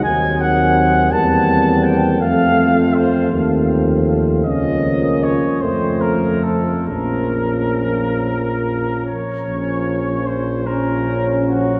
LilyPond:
<<
  \new Staff \with { instrumentName = "Trumpet section" } { \time 6/8 \key bes \minor \tempo 4. = 51 aes''8 ges''4 a''4 g''8 | f''4 c''8 r4. | ees''4 des''8 c''8 bes'8 a'8 | bes'2~ bes'8 des''8~ |
des''4 c''8 bes'4 ges'8 | }
  \new Staff \with { instrumentName = "French horn section" } { \time 6/8 \key bes \minor c'4. c'4. | c'4. c'4. | des'4. c'4. | des'2~ des'8 r8 |
des'4. des'4. | }
  \new Staff \with { instrumentName = "Euphonium" } { \time 6/8 \key bes \minor bes4. bes4. | a4. a4. | bes4. a4. | bes2~ bes8 r8 |
r4. des'4. | }
  \new Staff \with { instrumentName = "Trombone" } { \clef bass \time 6/8 \key bes \minor ges4. g4. | f4. f4. | f4. f4. | f2~ f8 r8 |
f4. f4. | }
  \new Staff \with { instrumentName = "Tuba" } { \clef bass \time 6/8 \key bes \minor ees,4. e,4. | f,4. ees,4. | des,4. f,4. | bes,,2~ bes,,8 r8 |
bes,,2. | }
>>